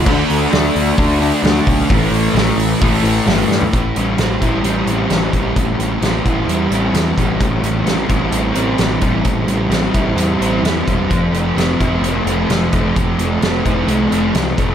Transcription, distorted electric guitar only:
X:1
M:4/4
L:1/8
Q:1/4=130
K:Am
V:1 name="Distorted electric guitar"
[D,A,D]2 [D,A,D]2 [D,A,D] [A,D] [D,A,D]2 | [A,,E,A,]2 [A,,E,A,]2 [A,,E,A,] [E,A,] [A,,E,A,]2 | A,, G, C E G, C E, G, | A,, G, C E G, C E, G, |
A,, G, C E G, C E, G, | A,, G, C E G, C E, G, | F, A, C E A, C F, A, | F, A, C E A, C F, A, |]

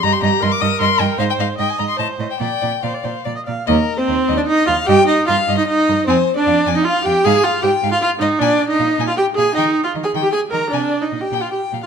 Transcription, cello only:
X:1
M:3/4
L:1/8
Q:1/4=153
K:Eb
V:1 name="Cello" clef=bass
G,, G,, G,, G,, G,, G,, | A,, A,, A,, A,, =A,, A,, | B,, B,, B,, B,, B,, B,, | E,, z E,, E,, z E,, |
G,, z G,, G,, z G,, | F,, z F,, F,, z F,, | A,, z A,, A,, z A,, | B,, z B,, B,, z B,, |
E, z E, E, z E, | C, z B,, B,, z B,, |]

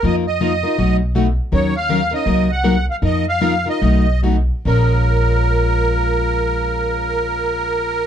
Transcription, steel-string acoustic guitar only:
X:1
M:4/4
L:1/16
Q:"Swing" 1/4=148
K:Bbm
V:1 name="Steel-string acoustic guitar"
[F,B,EFB]2 z2 [F,B,EFB] z [EFB]2 [=B,,^F,=A,^D^F]2 z2 [B,,F,A,DF] z3 | [E,G,DEB]2 z2 [E,G,DEB] z [DEB]2 [C,G,B,EB]2 z2 [C,G,B,EB] z3 | [F,B,EFB]2 z2 [F,B,EFB] z [EFB]2 [=B,,^F,=A,^D^F]2 z2 [B,,F,A,DF] z3 | [B,,F,A,DFB]16- |
[B,,F,A,DFB]16 |]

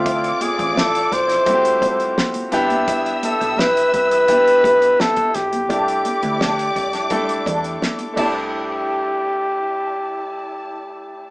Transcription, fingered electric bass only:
X:1
M:4/4
L:1/16
Q:1/4=85
K:C
V:1 name="Fingered electric bass" clef=bass
D,,2 z A,,,3 B,,,2 z6 C,,2- | C,,2 z B,,,3 C,,4 B,,,2 z2 B,,,2 | C,,2 z D,,3 C,,4 E,,2 z2 C,,2- | C,,16 |]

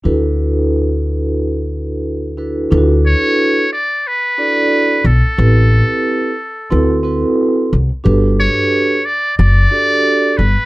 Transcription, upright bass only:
X:1
M:4/4
L:1/16
Q:"Swing 16ths" 1/4=90
K:D
V:1 name="Upright bass" clef=bass
D,,16 | D,,3 z8 z3 B,,, z | A,,,3 z4 z D,,4 z2 =C,, z | G,,,3 z4 z F,,,2 z4 G,,, z |]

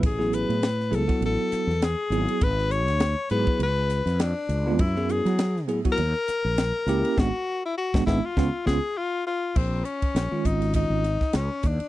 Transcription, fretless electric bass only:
X:1
M:4/4
L:1/16
Q:"Swing 16ths" 1/4=101
K:C#phr
V:1 name="Fretless electric bass" clef=bass
A,,,3 A,,3 C,, z A,,, z2 E,,2 z G,,, z | G,,,3 D,,2 z G,, z C,,3 ^E,,2 z C,,2 | F,,3 F,3 A,, z ^D,, z2 ^A,,,2 z C,, z | G,,, z4 G,,, G,,, z C,, z C,, z4 z |
[K:Bbm] B,,,2 z2 B,,, z A,,,3 A,,,2 z D,, z E,, z |]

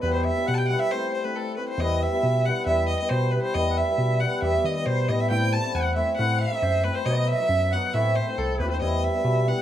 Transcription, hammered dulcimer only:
X:1
M:2/4
L:1/16
Q:1/4=137
K:none
V:1 name="Hammered dulcimer"
[G,B,E]2 z [G,B,E] z2 [G,B,E] z | [A,CE]2 z [A,CE] z2 [A,CE] z | [G,B,E]2 z [G,B,E] z2 [G,B,E] z | [G,B,E]2 z [G,B,E] z2 [G,B,E] z |
[G,B,E]2 z [G,B,E] z2 [G,B,E] z | [G,B,G]2 z [G,B,E] z2 [G,B,E] z | [A,CE]2 z [A,CE] z2 [A,CE] z | [A,CE]2 z [A,C^D] z2 [A,CE] z |
[^F,B,^D]2 z [F,B,D] z2 [F,B,D] z | [A,CE]2 z [A,CE] z2 [A,CE] z | [G,B,E]2 z [G,B,E] z2 [G,B,E] z |]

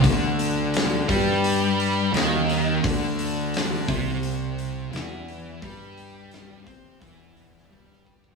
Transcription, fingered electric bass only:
X:1
M:4/4
L:1/8
Q:1/4=86
K:Clyd
V:1 name="Fingered electric bass" clef=bass
D,,3 G,,3 _E,,2 | D,,3 C,,3 E,,2 | G,,3 C, E,,2 G,,2 |]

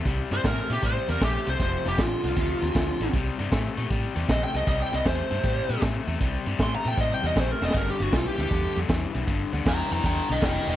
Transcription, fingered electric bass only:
X:1
M:4/4
L:1/8
Q:"Swing" 1/4=156
K:Cmix
V:1 name="Fingered electric bass" clef=bass
C,, G,, A,, B,, A,, E,, B,,, C,, | F,,, F,,, A,,, C,, D,, _E,, D,, A,,, | C,, G,, A,, B,, A,, E,, B,,, C,, | C,, C,, E,, G,, A,, B,, A,, E,, |
C,, G,, A,, B,, A,, E,, B,,, F,,, | G,,, G,,, =B,,, D,, E,, F,, E,, B,,, | G,,, D,, E,, F,, E,, =B,,, F,,, E,,, |]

